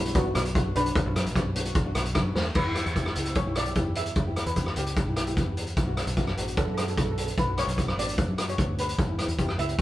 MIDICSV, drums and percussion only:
0, 0, Header, 1, 2, 480
1, 0, Start_track
1, 0, Tempo, 401606
1, 1137, Time_signature, 4, 2, 24, 8
1, 11731, End_track
2, 0, Start_track
2, 0, Title_t, "Drums"
2, 65, Note_on_c, 9, 42, 59
2, 176, Note_off_c, 9, 42, 0
2, 176, Note_on_c, 9, 42, 69
2, 180, Note_on_c, 9, 36, 119
2, 296, Note_off_c, 9, 42, 0
2, 299, Note_off_c, 9, 36, 0
2, 418, Note_on_c, 9, 37, 98
2, 418, Note_on_c, 9, 42, 90
2, 537, Note_off_c, 9, 37, 0
2, 537, Note_off_c, 9, 42, 0
2, 540, Note_on_c, 9, 42, 61
2, 660, Note_off_c, 9, 42, 0
2, 661, Note_on_c, 9, 36, 107
2, 663, Note_on_c, 9, 42, 76
2, 780, Note_off_c, 9, 36, 0
2, 782, Note_off_c, 9, 42, 0
2, 903, Note_on_c, 9, 42, 87
2, 1022, Note_off_c, 9, 42, 0
2, 1025, Note_on_c, 9, 42, 59
2, 1141, Note_on_c, 9, 36, 114
2, 1144, Note_off_c, 9, 42, 0
2, 1144, Note_on_c, 9, 42, 70
2, 1261, Note_off_c, 9, 36, 0
2, 1264, Note_off_c, 9, 42, 0
2, 1385, Note_on_c, 9, 37, 93
2, 1385, Note_on_c, 9, 42, 79
2, 1505, Note_off_c, 9, 37, 0
2, 1505, Note_off_c, 9, 42, 0
2, 1509, Note_on_c, 9, 42, 63
2, 1620, Note_on_c, 9, 36, 92
2, 1622, Note_off_c, 9, 42, 0
2, 1622, Note_on_c, 9, 37, 77
2, 1622, Note_on_c, 9, 42, 64
2, 1739, Note_off_c, 9, 36, 0
2, 1742, Note_off_c, 9, 37, 0
2, 1742, Note_off_c, 9, 42, 0
2, 1859, Note_on_c, 9, 42, 87
2, 1974, Note_off_c, 9, 42, 0
2, 1974, Note_on_c, 9, 42, 67
2, 2089, Note_off_c, 9, 42, 0
2, 2089, Note_on_c, 9, 42, 63
2, 2095, Note_on_c, 9, 36, 120
2, 2209, Note_off_c, 9, 42, 0
2, 2214, Note_off_c, 9, 36, 0
2, 2329, Note_on_c, 9, 37, 90
2, 2329, Note_on_c, 9, 42, 99
2, 2449, Note_off_c, 9, 37, 0
2, 2449, Note_off_c, 9, 42, 0
2, 2455, Note_on_c, 9, 42, 61
2, 2567, Note_off_c, 9, 42, 0
2, 2567, Note_on_c, 9, 37, 98
2, 2567, Note_on_c, 9, 42, 72
2, 2573, Note_on_c, 9, 36, 101
2, 2686, Note_off_c, 9, 37, 0
2, 2686, Note_off_c, 9, 42, 0
2, 2692, Note_off_c, 9, 36, 0
2, 2811, Note_on_c, 9, 38, 61
2, 2931, Note_off_c, 9, 38, 0
2, 3045, Note_on_c, 9, 49, 88
2, 3053, Note_on_c, 9, 36, 112
2, 3165, Note_off_c, 9, 49, 0
2, 3172, Note_off_c, 9, 36, 0
2, 3291, Note_on_c, 9, 37, 77
2, 3291, Note_on_c, 9, 42, 79
2, 3411, Note_off_c, 9, 37, 0
2, 3411, Note_off_c, 9, 42, 0
2, 3418, Note_on_c, 9, 42, 59
2, 3536, Note_on_c, 9, 36, 82
2, 3537, Note_off_c, 9, 42, 0
2, 3537, Note_on_c, 9, 42, 56
2, 3655, Note_off_c, 9, 36, 0
2, 3655, Note_on_c, 9, 37, 81
2, 3657, Note_off_c, 9, 42, 0
2, 3770, Note_on_c, 9, 42, 77
2, 3774, Note_off_c, 9, 37, 0
2, 3888, Note_off_c, 9, 42, 0
2, 3888, Note_on_c, 9, 42, 64
2, 4004, Note_off_c, 9, 42, 0
2, 4004, Note_on_c, 9, 42, 66
2, 4012, Note_on_c, 9, 36, 106
2, 4124, Note_off_c, 9, 42, 0
2, 4132, Note_off_c, 9, 36, 0
2, 4248, Note_on_c, 9, 37, 91
2, 4248, Note_on_c, 9, 42, 81
2, 4367, Note_off_c, 9, 37, 0
2, 4367, Note_off_c, 9, 42, 0
2, 4367, Note_on_c, 9, 42, 57
2, 4484, Note_off_c, 9, 42, 0
2, 4484, Note_on_c, 9, 42, 68
2, 4491, Note_on_c, 9, 36, 100
2, 4604, Note_off_c, 9, 42, 0
2, 4610, Note_off_c, 9, 36, 0
2, 4724, Note_on_c, 9, 42, 83
2, 4844, Note_off_c, 9, 42, 0
2, 4847, Note_on_c, 9, 42, 60
2, 4965, Note_off_c, 9, 42, 0
2, 4965, Note_on_c, 9, 42, 60
2, 4973, Note_on_c, 9, 36, 104
2, 5084, Note_off_c, 9, 42, 0
2, 5092, Note_off_c, 9, 36, 0
2, 5214, Note_on_c, 9, 37, 78
2, 5214, Note_on_c, 9, 42, 84
2, 5333, Note_off_c, 9, 37, 0
2, 5333, Note_off_c, 9, 42, 0
2, 5333, Note_on_c, 9, 42, 61
2, 5448, Note_off_c, 9, 42, 0
2, 5448, Note_on_c, 9, 42, 66
2, 5454, Note_on_c, 9, 36, 72
2, 5567, Note_off_c, 9, 42, 0
2, 5570, Note_on_c, 9, 37, 75
2, 5574, Note_off_c, 9, 36, 0
2, 5687, Note_on_c, 9, 42, 83
2, 5689, Note_off_c, 9, 37, 0
2, 5807, Note_off_c, 9, 42, 0
2, 5813, Note_on_c, 9, 42, 61
2, 5932, Note_off_c, 9, 42, 0
2, 5933, Note_on_c, 9, 42, 62
2, 5935, Note_on_c, 9, 36, 106
2, 6053, Note_off_c, 9, 42, 0
2, 6055, Note_off_c, 9, 36, 0
2, 6171, Note_on_c, 9, 37, 85
2, 6171, Note_on_c, 9, 42, 87
2, 6290, Note_off_c, 9, 37, 0
2, 6290, Note_off_c, 9, 42, 0
2, 6296, Note_on_c, 9, 42, 55
2, 6415, Note_off_c, 9, 42, 0
2, 6417, Note_on_c, 9, 36, 97
2, 6420, Note_on_c, 9, 42, 63
2, 6536, Note_off_c, 9, 36, 0
2, 6539, Note_off_c, 9, 42, 0
2, 6656, Note_on_c, 9, 42, 72
2, 6772, Note_off_c, 9, 42, 0
2, 6772, Note_on_c, 9, 42, 50
2, 6891, Note_off_c, 9, 42, 0
2, 6894, Note_on_c, 9, 42, 62
2, 6895, Note_on_c, 9, 36, 107
2, 7014, Note_off_c, 9, 42, 0
2, 7015, Note_off_c, 9, 36, 0
2, 7135, Note_on_c, 9, 37, 85
2, 7135, Note_on_c, 9, 42, 74
2, 7253, Note_off_c, 9, 42, 0
2, 7253, Note_on_c, 9, 42, 59
2, 7255, Note_off_c, 9, 37, 0
2, 7372, Note_off_c, 9, 42, 0
2, 7372, Note_on_c, 9, 42, 54
2, 7374, Note_on_c, 9, 36, 92
2, 7491, Note_off_c, 9, 42, 0
2, 7494, Note_off_c, 9, 36, 0
2, 7496, Note_on_c, 9, 37, 72
2, 7615, Note_off_c, 9, 37, 0
2, 7617, Note_on_c, 9, 42, 77
2, 7737, Note_off_c, 9, 42, 0
2, 7740, Note_on_c, 9, 42, 60
2, 7852, Note_off_c, 9, 42, 0
2, 7852, Note_on_c, 9, 42, 64
2, 7856, Note_on_c, 9, 36, 113
2, 7972, Note_off_c, 9, 42, 0
2, 7976, Note_off_c, 9, 36, 0
2, 8096, Note_on_c, 9, 37, 84
2, 8096, Note_on_c, 9, 42, 92
2, 8216, Note_off_c, 9, 37, 0
2, 8216, Note_off_c, 9, 42, 0
2, 8220, Note_on_c, 9, 42, 54
2, 8335, Note_off_c, 9, 42, 0
2, 8335, Note_on_c, 9, 42, 75
2, 8336, Note_on_c, 9, 36, 99
2, 8455, Note_off_c, 9, 42, 0
2, 8456, Note_off_c, 9, 36, 0
2, 8576, Note_on_c, 9, 42, 76
2, 8695, Note_off_c, 9, 42, 0
2, 8695, Note_on_c, 9, 42, 52
2, 8814, Note_off_c, 9, 42, 0
2, 8816, Note_on_c, 9, 36, 102
2, 8817, Note_on_c, 9, 42, 60
2, 8935, Note_off_c, 9, 36, 0
2, 8936, Note_off_c, 9, 42, 0
2, 9054, Note_on_c, 9, 37, 79
2, 9054, Note_on_c, 9, 42, 79
2, 9173, Note_off_c, 9, 37, 0
2, 9173, Note_off_c, 9, 42, 0
2, 9182, Note_on_c, 9, 42, 64
2, 9297, Note_on_c, 9, 36, 76
2, 9299, Note_off_c, 9, 42, 0
2, 9299, Note_on_c, 9, 42, 59
2, 9417, Note_off_c, 9, 36, 0
2, 9419, Note_off_c, 9, 42, 0
2, 9419, Note_on_c, 9, 37, 80
2, 9538, Note_off_c, 9, 37, 0
2, 9547, Note_on_c, 9, 42, 87
2, 9663, Note_off_c, 9, 42, 0
2, 9663, Note_on_c, 9, 42, 58
2, 9777, Note_on_c, 9, 36, 112
2, 9781, Note_off_c, 9, 42, 0
2, 9781, Note_on_c, 9, 42, 65
2, 9897, Note_off_c, 9, 36, 0
2, 9900, Note_off_c, 9, 42, 0
2, 10017, Note_on_c, 9, 37, 97
2, 10017, Note_on_c, 9, 42, 89
2, 10136, Note_off_c, 9, 37, 0
2, 10136, Note_off_c, 9, 42, 0
2, 10143, Note_on_c, 9, 42, 57
2, 10259, Note_on_c, 9, 36, 102
2, 10260, Note_off_c, 9, 42, 0
2, 10260, Note_on_c, 9, 42, 72
2, 10378, Note_off_c, 9, 36, 0
2, 10379, Note_off_c, 9, 42, 0
2, 10498, Note_on_c, 9, 42, 76
2, 10618, Note_off_c, 9, 42, 0
2, 10623, Note_on_c, 9, 42, 60
2, 10739, Note_off_c, 9, 42, 0
2, 10739, Note_on_c, 9, 42, 51
2, 10740, Note_on_c, 9, 36, 107
2, 10859, Note_off_c, 9, 42, 0
2, 10860, Note_off_c, 9, 36, 0
2, 10979, Note_on_c, 9, 37, 78
2, 10979, Note_on_c, 9, 42, 68
2, 11094, Note_off_c, 9, 42, 0
2, 11094, Note_on_c, 9, 42, 58
2, 11098, Note_off_c, 9, 37, 0
2, 11213, Note_off_c, 9, 42, 0
2, 11218, Note_on_c, 9, 36, 84
2, 11218, Note_on_c, 9, 42, 60
2, 11336, Note_on_c, 9, 37, 78
2, 11337, Note_off_c, 9, 36, 0
2, 11337, Note_off_c, 9, 42, 0
2, 11455, Note_off_c, 9, 37, 0
2, 11459, Note_on_c, 9, 42, 68
2, 11577, Note_off_c, 9, 42, 0
2, 11577, Note_on_c, 9, 42, 54
2, 11694, Note_off_c, 9, 42, 0
2, 11694, Note_on_c, 9, 42, 67
2, 11731, Note_off_c, 9, 42, 0
2, 11731, End_track
0, 0, End_of_file